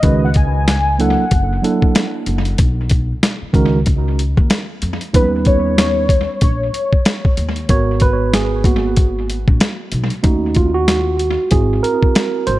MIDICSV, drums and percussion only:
0, 0, Header, 1, 2, 480
1, 0, Start_track
1, 0, Tempo, 638298
1, 25, Time_signature, 4, 2, 24, 8
1, 9469, End_track
2, 0, Start_track
2, 0, Title_t, "Drums"
2, 21, Note_on_c, 9, 42, 88
2, 26, Note_on_c, 9, 36, 116
2, 96, Note_off_c, 9, 42, 0
2, 101, Note_off_c, 9, 36, 0
2, 256, Note_on_c, 9, 42, 64
2, 269, Note_on_c, 9, 36, 80
2, 331, Note_off_c, 9, 42, 0
2, 345, Note_off_c, 9, 36, 0
2, 509, Note_on_c, 9, 38, 105
2, 517, Note_on_c, 9, 42, 73
2, 585, Note_off_c, 9, 38, 0
2, 592, Note_off_c, 9, 42, 0
2, 749, Note_on_c, 9, 42, 62
2, 824, Note_off_c, 9, 42, 0
2, 986, Note_on_c, 9, 42, 83
2, 990, Note_on_c, 9, 36, 84
2, 1061, Note_off_c, 9, 42, 0
2, 1065, Note_off_c, 9, 36, 0
2, 1236, Note_on_c, 9, 42, 69
2, 1311, Note_off_c, 9, 42, 0
2, 1371, Note_on_c, 9, 36, 75
2, 1447, Note_off_c, 9, 36, 0
2, 1467, Note_on_c, 9, 42, 77
2, 1472, Note_on_c, 9, 38, 101
2, 1542, Note_off_c, 9, 42, 0
2, 1547, Note_off_c, 9, 38, 0
2, 1702, Note_on_c, 9, 42, 65
2, 1778, Note_off_c, 9, 42, 0
2, 1844, Note_on_c, 9, 42, 45
2, 1920, Note_off_c, 9, 42, 0
2, 1942, Note_on_c, 9, 42, 88
2, 1946, Note_on_c, 9, 36, 111
2, 2018, Note_off_c, 9, 42, 0
2, 2021, Note_off_c, 9, 36, 0
2, 2177, Note_on_c, 9, 42, 73
2, 2190, Note_on_c, 9, 36, 76
2, 2252, Note_off_c, 9, 42, 0
2, 2265, Note_off_c, 9, 36, 0
2, 2429, Note_on_c, 9, 38, 106
2, 2437, Note_on_c, 9, 42, 76
2, 2504, Note_off_c, 9, 38, 0
2, 2512, Note_off_c, 9, 42, 0
2, 2661, Note_on_c, 9, 36, 82
2, 2665, Note_on_c, 9, 42, 55
2, 2736, Note_off_c, 9, 36, 0
2, 2740, Note_off_c, 9, 42, 0
2, 2902, Note_on_c, 9, 42, 80
2, 2908, Note_on_c, 9, 36, 89
2, 2977, Note_off_c, 9, 42, 0
2, 2984, Note_off_c, 9, 36, 0
2, 3151, Note_on_c, 9, 42, 71
2, 3227, Note_off_c, 9, 42, 0
2, 3289, Note_on_c, 9, 36, 78
2, 3364, Note_off_c, 9, 36, 0
2, 3384, Note_on_c, 9, 42, 75
2, 3389, Note_on_c, 9, 38, 102
2, 3459, Note_off_c, 9, 42, 0
2, 3464, Note_off_c, 9, 38, 0
2, 3623, Note_on_c, 9, 42, 69
2, 3698, Note_off_c, 9, 42, 0
2, 3768, Note_on_c, 9, 42, 46
2, 3843, Note_off_c, 9, 42, 0
2, 3867, Note_on_c, 9, 36, 102
2, 3868, Note_on_c, 9, 42, 87
2, 3943, Note_off_c, 9, 36, 0
2, 3943, Note_off_c, 9, 42, 0
2, 4099, Note_on_c, 9, 42, 65
2, 4110, Note_on_c, 9, 36, 82
2, 4174, Note_off_c, 9, 42, 0
2, 4185, Note_off_c, 9, 36, 0
2, 4348, Note_on_c, 9, 38, 105
2, 4356, Note_on_c, 9, 42, 81
2, 4424, Note_off_c, 9, 38, 0
2, 4431, Note_off_c, 9, 42, 0
2, 4580, Note_on_c, 9, 36, 80
2, 4586, Note_on_c, 9, 42, 65
2, 4655, Note_off_c, 9, 36, 0
2, 4661, Note_off_c, 9, 42, 0
2, 4821, Note_on_c, 9, 42, 80
2, 4827, Note_on_c, 9, 36, 84
2, 4897, Note_off_c, 9, 42, 0
2, 4902, Note_off_c, 9, 36, 0
2, 5070, Note_on_c, 9, 42, 68
2, 5145, Note_off_c, 9, 42, 0
2, 5208, Note_on_c, 9, 36, 74
2, 5284, Note_off_c, 9, 36, 0
2, 5305, Note_on_c, 9, 42, 72
2, 5309, Note_on_c, 9, 38, 104
2, 5380, Note_off_c, 9, 42, 0
2, 5385, Note_off_c, 9, 38, 0
2, 5451, Note_on_c, 9, 36, 82
2, 5526, Note_off_c, 9, 36, 0
2, 5544, Note_on_c, 9, 42, 66
2, 5619, Note_off_c, 9, 42, 0
2, 5685, Note_on_c, 9, 42, 44
2, 5760, Note_off_c, 9, 42, 0
2, 5783, Note_on_c, 9, 42, 87
2, 5785, Note_on_c, 9, 36, 113
2, 5858, Note_off_c, 9, 42, 0
2, 5861, Note_off_c, 9, 36, 0
2, 6015, Note_on_c, 9, 42, 68
2, 6028, Note_on_c, 9, 36, 75
2, 6090, Note_off_c, 9, 42, 0
2, 6103, Note_off_c, 9, 36, 0
2, 6268, Note_on_c, 9, 38, 100
2, 6276, Note_on_c, 9, 42, 78
2, 6343, Note_off_c, 9, 38, 0
2, 6351, Note_off_c, 9, 42, 0
2, 6499, Note_on_c, 9, 36, 85
2, 6506, Note_on_c, 9, 42, 63
2, 6574, Note_off_c, 9, 36, 0
2, 6582, Note_off_c, 9, 42, 0
2, 6742, Note_on_c, 9, 42, 82
2, 6747, Note_on_c, 9, 36, 84
2, 6817, Note_off_c, 9, 42, 0
2, 6822, Note_off_c, 9, 36, 0
2, 6990, Note_on_c, 9, 42, 66
2, 7066, Note_off_c, 9, 42, 0
2, 7126, Note_on_c, 9, 36, 80
2, 7202, Note_off_c, 9, 36, 0
2, 7222, Note_on_c, 9, 42, 80
2, 7227, Note_on_c, 9, 38, 111
2, 7297, Note_off_c, 9, 42, 0
2, 7302, Note_off_c, 9, 38, 0
2, 7457, Note_on_c, 9, 42, 74
2, 7532, Note_off_c, 9, 42, 0
2, 7598, Note_on_c, 9, 42, 45
2, 7673, Note_off_c, 9, 42, 0
2, 7698, Note_on_c, 9, 42, 91
2, 7702, Note_on_c, 9, 36, 116
2, 7773, Note_off_c, 9, 42, 0
2, 7778, Note_off_c, 9, 36, 0
2, 7931, Note_on_c, 9, 42, 65
2, 7945, Note_on_c, 9, 36, 78
2, 8006, Note_off_c, 9, 42, 0
2, 8020, Note_off_c, 9, 36, 0
2, 8181, Note_on_c, 9, 38, 98
2, 8189, Note_on_c, 9, 42, 78
2, 8257, Note_off_c, 9, 38, 0
2, 8264, Note_off_c, 9, 42, 0
2, 8418, Note_on_c, 9, 42, 63
2, 8493, Note_off_c, 9, 42, 0
2, 8653, Note_on_c, 9, 42, 78
2, 8662, Note_on_c, 9, 36, 92
2, 8729, Note_off_c, 9, 42, 0
2, 8737, Note_off_c, 9, 36, 0
2, 8905, Note_on_c, 9, 42, 67
2, 8980, Note_off_c, 9, 42, 0
2, 9043, Note_on_c, 9, 36, 75
2, 9118, Note_off_c, 9, 36, 0
2, 9140, Note_on_c, 9, 42, 76
2, 9144, Note_on_c, 9, 38, 105
2, 9215, Note_off_c, 9, 42, 0
2, 9220, Note_off_c, 9, 38, 0
2, 9376, Note_on_c, 9, 42, 68
2, 9451, Note_off_c, 9, 42, 0
2, 9469, End_track
0, 0, End_of_file